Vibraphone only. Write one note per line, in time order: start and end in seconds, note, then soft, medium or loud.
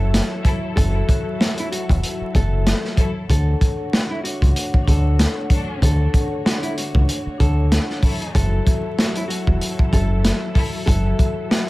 0.00 0.69 F#3 medium
0.00 0.70 F#4 medium
0.00 0.70 A4 medium
0.00 0.71 E5 loud
0.74 1.05 F#3 medium
0.74 1.06 F#4 medium
0.74 1.06 A4 medium
0.74 1.06 E5 loud
1.07 1.37 F#3 medium
1.07 1.37 F#4 medium
1.07 1.38 A4 medium
1.07 1.38 E5 loud
1.38 2.27 F#3 loud
1.38 2.28 F#4 medium
1.38 2.28 A4 medium
1.38 2.29 E5 loud
2.32 3.07 F#3 medium
2.32 3.08 F#4 medium
2.32 3.08 A4 medium
2.32 3.09 E5 loud
3.29 4.17 D4 medium
3.29 4.18 A4 medium
3.29 4.18 C#5 medium
3.29 4.19 F#5 loud
4.24 4.82 D4 medium
4.24 4.83 A4 medium
4.24 4.84 C#5 medium
4.24 4.84 F#5 medium
4.83 5.73 D4 medium
4.83 5.74 A4 medium
4.83 5.74 C#5 medium
4.83 5.75 F#5 loud
5.81 6.10 D4 medium
5.81 6.11 A4 medium
5.81 6.12 C#5 medium
5.81 6.13 F#5 loud
6.12 6.42 D4 medium
6.12 6.43 A4 medium
6.12 6.43 C#5 medium
6.12 6.44 F#5 loud
6.45 7.33 D4 loud
6.45 7.34 A4 medium
6.45 7.34 C#5 medium
6.45 7.35 F#5 loud
7.38 8.13 D4 medium
7.38 8.13 A4 medium
7.38 8.14 C#5 medium
7.38 8.14 F#5 loud
8.33 9.22 F#3 medium
8.33 9.23 F#4 medium
8.33 9.23 A4 medium
8.33 9.24 E5 loud
9.29 9.88 F#3 medium
9.29 9.89 F#4 medium
9.29 9.89 A4 medium
9.29 9.90 E5 loud
9.91 10.80 F#3 medium
9.91 10.80 F#4 medium
9.91 10.81 A4 medium
9.91 10.81 E5 loud
10.85 11.16 F#3 medium
10.85 11.16 F#4 medium
10.85 11.17 A4 medium
10.85 11.17 E5 loud
11.17 11.47 F#3 medium
11.17 11.48 F#4 medium
11.17 11.48 A4 medium
11.17 11.49 E5 loud
11.49 11.70 F#3 loud
11.49 11.70 F#4 medium
11.49 11.70 A4 medium
11.49 11.70 E5 loud